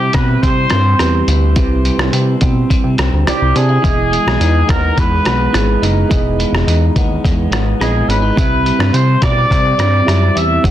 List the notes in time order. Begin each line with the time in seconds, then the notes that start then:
Already playing: C3 G3 C4 E4 G4 E5
0.13 B2 C4 B4, kick, cross-stick, closed hi-hat
0.42 C3 G3 C5, kick, closed hi-hat
0.70 G2 C4, cross-stick, closed hi-hat
0.99 E2 G3 C4 E4 G4 B4, cross-stick, closed hi-hat
1.28 D2 E4, closed hi-hat
1.56 C2 C3 C4 E4 G4 B4, kick, closed hi-hat
1.85 G3, closed hi-hat
1.98 C2, cross-stick
2.13 C3 E4, closed hi-hat
2.41 B2 C4, kick, closed hi-hat
2.70 G3, kick, closed hi-hat
2.84 C3
2.98 C2 C4, cross-stick, closed hi-hat
3.13 D2
3.26 C2 C4 E4 G4 D5, cross-stick, closed hi-hat
3.42 C2
3.55 C3 D4 G#4, closed hi-hat
3.69 E4
3.82 E1 E3 B3 E4 G#4 D#5, kick, closed hi-hat
4.11 G#3, closed hi-hat
4.26 B1, cross-stick
4.39 E2 D#4, closed hi-hat
4.68 D#2 B3 A#4, kick, cross-stick, closed hi-hat
4.96 E2 G#3 B4, kick, closed hi-hat
5.25 B1 B3, cross-stick, closed hi-hat
5.53 G#1 G#3 B3 E4 G#4 B4, cross-stick, closed hi-hat
5.82 F#1 D#4, closed hi-hat
6.09 E1 E3 B3 E4 G#4 D#5, kick, closed hi-hat
6.39 G#3, closed hi-hat
6.52 E1, cross-stick
6.67 E2 D#4, closed hi-hat
6.96 D#2 B3, kick, closed hi-hat
7.25 E2 G#3, kick, closed hi-hat
7.51 G#1 B3, cross-stick, closed hi-hat
7.80 A#1 G#3 B3 E4 G#4 D#5, cross-stick, closed hi-hat
8.08 G#1 C#4 B4, closed hi-hat
8.22 D#4
8.36 C2 C3 C4 E4 G4 E5, kick, closed hi-hat
8.65 G3, closed hi-hat
8.79 G2, cross-stick
8.94 C3 E4 C5, closed hi-hat
9.22 B2 C4 D5, kick, cross-stick, closed hi-hat
9.50 C3 G3, kick, closed hi-hat
9.78 G2 C4, cross-stick, closed hi-hat
10.04 F#2 G3 C4 E4 G4 E5, cross-stick
10.09 closed hi-hat
10.35 E2 E4 E5, closed hi-hat
10.62 F#1 F#2 C#4 F#4 G#4 F#5, kick, closed hi-hat